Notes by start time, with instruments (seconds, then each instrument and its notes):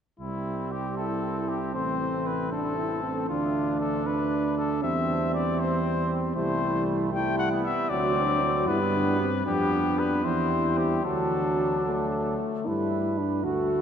0.19 tuba C2, trombone G3, trumpet C4, cornet E4
0.72 cornet G4
0.97 french horn E4, cornet A4
1.49 cornet G4
1.74 tuba A1, trombone A3, french horn C4, cornet C5
2.27 cornet B4
2.52 french horn D4, cornet A4
2.78 french horn E4
3.03 french horn C4
3.29 tuba D2, french horn D4, trumpet D4, cornet F4
3.80 cornet A4
4.06 french horn D4, cornet B4
4.57 cornet A4
4.83 tuba E2, trombone G3, french horn C4, trumpet C4, cornet E5
5.34 cornet D5
5.59 cornet C5
6.36 tuba C2, trombone G3, trumpet A3, french horn E4, cornet C5
7.13 trombone G3, trumpet A3, french horn E4, cornet G5
7.38 cornet F#5
7.51 trumpet B3
7.64 cornet E5
7.89 tuba D2, trombone F#3, trumpet C4, french horn F#4, cornet D5
8.16 french horn D4
8.42 french horn F#4
8.67 tuba G2, trombone G3, trumpet B3, french horn E4, cornet B4
8.94 french horn D4
9.20 french horn C4
9.46 tuba F2, trombone G3, trumpet B3, french horn D4, cornet G4
9.99 cornet B4
10.24 tuba E2, trombone G3, trumpet C4, french horn E4, cornet C5
10.78 cornet G4
11.05 tuba D2, trombone F#3, trumpet D4, french horn F#4, cornet A4
11.86 french horn A3
12.66 tuba G2, trombone G3, french horn E4, trumpet B4
13.18 french horn D4
13.44 tuba D2, trombone A3, french horn F#4, trumpet F#4, cornet A4